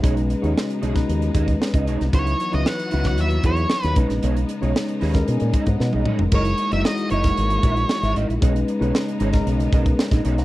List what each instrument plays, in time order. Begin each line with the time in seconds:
Already playing: string section G#3
0.02 fingered electric bass B1, string section C#3 B3 D#4, tine electric piano G#3 C#4 D#4 B4, clean electric guitar D#4 G#4 C#5, kick, closed hi-hat
0.17 muted clean electric guitar stroke, closed hi-hat
0.30 muted clean electric guitar stroke, closed hi-hat
0.42 fingered electric bass D#2, tine electric piano G#3 C#4 D#4 F#4, clean electric guitar D#4 G#4 C#5, closed hi-hat
0.55 muted clean electric guitar stroke, snare
0.68 muted clean electric guitar stroke, closed hi-hat
0.81 fingered electric bass B1, clean electric guitar D#4 G#4 C#5, closed hi-hat
0.94 tine electric piano G#3 C#4 D#4 B4, muted clean electric guitar stroke, kick, snare, closed hi-hat
1.09 fingered electric bass D#2, closed hi-hat
1.21 muted clean electric guitar stroke, closed hi-hat
1.34 fingered electric bass D#2, clean electric guitar D#4 G#4 D#5, kick, closed hi-hat
1.48 muted clean electric guitar stroke, kick, closed hi-hat
1.60 muted clean electric guitar stroke, snare
1.74 fingered electric bass C#2, clean electric guitar D#4 G#4 D#5, kick, closed hi-hat
1.86 fingered electric bass B1, clean electric guitar D#4 G#4 C#5, closed hi-hat
2.00 fingered electric bass C2, muted clean electric guitar stroke, snare, closed hi-hat
2.12 fingered electric bass C#2, string section E3 F#3 F#4, tine electric piano F#3 D#4 E4 B4, clean electric guitar E4 F#4 B4, lead electric guitar C#5, kick, closed hi-hat
2.26 muted clean electric guitar stroke, closed hi-hat
2.40 muted clean electric guitar stroke, closed hi-hat
2.51 fingered electric bass C#2, tine electric piano F#3 D#4 E4 B4, clean electric guitar E4 F#4 B4, lead electric guitar D#5, closed hi-hat
2.66 lead electric guitar F#5, muted clean electric guitar stroke, snare
2.78 muted clean electric guitar stroke, closed hi-hat
2.91 fingered electric bass C#2, clean electric guitar E4 F#4 B4, closed hi-hat
3.04 tine electric piano F#3 D#4 E4 B4, lead electric guitar F#5, muted clean electric guitar stroke, kick, snare, closed hi-hat
3.18 fingered electric bass D#2, lead electric guitar E5, closed hi-hat
3.30 muted clean electric guitar stroke, closed hi-hat
3.43 fingered electric bass E2, clean electric guitar E4 F#4 C#5, lead electric guitar C#5, kick, closed hi-hat
3.56 muted clean electric guitar stroke, closed hi-hat
3.70 muted clean electric guitar stroke, snare
3.83 fingered electric bass D#2, clean electric guitar E4 F#4 C#5, snare, closed hi-hat
3.95 fingered electric bass B1, string section C#3 G#3 D#4, tine electric piano G#3 C#4 D#4 B4, clean electric guitar D#4 G#4 C#5, kick, closed hi-hat
4.10 fingered electric bass A#1, muted clean electric guitar stroke, snare, closed hi-hat
4.23 fingered electric bass B1, clean electric guitar D#4 G#4 C#5, closed hi-hat
4.37 muted clean electric guitar stroke, closed hi-hat
4.48 muted clean electric guitar stroke, closed hi-hat
4.61 fingered electric bass B1, tine electric piano G#3 C#4 D#4 C#5, clean electric guitar D#4 G#4 C#5, closed hi-hat
4.75 muted clean electric guitar stroke, snare
4.88 muted clean electric guitar stroke, closed hi-hat
5.00 fingered electric bass D#2, clean electric guitar D#4 G#4 C#5, tine electric piano B5, snare, open hi-hat
5.13 tine electric piano G#3 C#4 D#4 A#4, muted clean electric guitar stroke, kick, snare, closed hi-hat
5.26 fingered electric bass B2, tine electric piano G#5, closed hi-hat
5.40 fingered electric bass A#2, muted clean electric guitar stroke, closed hi-hat
5.53 clean electric guitar D#4 G#4 D#5, kick, closed hi-hat
5.66 fingered electric bass G#2, tine electric piano F#5, muted clean electric guitar stroke, kick, closed hi-hat
5.79 fingered electric bass B2, tine electric piano D#5, muted clean electric guitar stroke, snare
5.93 fingered electric bass B1, clean electric guitar D#4 G#4 D#5, high tom
6.06 clean electric guitar D#4 G#4 C#5, mid tom
6.19 fingered electric bass F1, muted clean electric guitar stroke, floor tom
6.31 fingered electric bass F#1, string section E3 A#3 F#4, tine electric piano G#3 D#4 E4 A#4, clean electric guitar E4 A#4 D#5, lead electric guitar C#5, kick, crash
6.45 muted clean electric guitar stroke, closed hi-hat
6.58 muted clean electric guitar stroke, closed hi-hat
6.71 fingered electric bass F#1, tine electric piano G#3 D#4 E4 A#4, clean electric guitar E4 A#4 D#5, lead electric guitar E5, closed hi-hat
6.85 lead electric guitar D#5, snare
6.98 muted clean electric guitar stroke, closed hi-hat
7.10 fingered electric bass F#1, clean electric guitar E4 A#4 D#5, lead electric guitar C#5, closed hi-hat
7.23 tine electric piano G#3 D#4 E4 A#4, muted clean electric guitar stroke, kick, snare, closed hi-hat
7.37 fingered electric bass G#1, closed hi-hat
7.50 muted clean electric guitar stroke, closed hi-hat
7.63 fingered electric bass A#1, clean electric guitar E4 A#4 E5, kick, closed hi-hat
7.76 muted clean electric guitar stroke, closed hi-hat
7.89 muted clean electric guitar stroke, snare
8.03 fingered electric bass G#1, clean electric guitar E4 A#4 E5, snare, closed hi-hat
8.15 fingered electric bass A1, clean electric guitar E4 A#4 D#5, closed hi-hat
8.29 fingered electric bass A#1, muted clean electric guitar stroke, closed hi-hat
8.41 fingered electric bass B1, string section C#3 B3 D#4, tine electric piano G#3 C#4 D#4 B4, clean electric guitar D#4 G#4 C#5, kick, closed hi-hat
8.54 muted clean electric guitar stroke, closed hi-hat
8.68 muted clean electric guitar stroke, closed hi-hat
8.80 fingered electric bass B1, tine electric piano G#3 C#4 D#4 B4, clean electric guitar D#4 G#4 C#5, closed hi-hat
8.94 muted clean electric guitar stroke, snare
9.07 muted clean electric guitar stroke, closed hi-hat
9.19 fingered electric bass G#1, clean electric guitar D#4 G#4 C#5, closed hi-hat
9.32 tine electric piano G#3 C#4 D#4 A#4, muted clean electric guitar stroke, kick, snare, closed hi-hat
9.47 fingered electric bass B1, closed hi-hat
9.59 muted clean electric guitar stroke, closed hi-hat
9.72 fingered electric bass B1, clean electric guitar D#4 G#4 D#5, kick, closed hi-hat
9.85 muted clean electric guitar stroke, kick, closed hi-hat
9.98 muted clean electric guitar stroke, snare
10.11 fingered electric bass A#1, clean electric guitar D#4 G#4 D#5, kick, snare, closed hi-hat
10.24 fingered electric bass B1, clean electric guitar D#4 G#4 C#5, closed hi-hat
10.37 fingered electric bass C2, muted clean electric guitar stroke, snare, closed hi-hat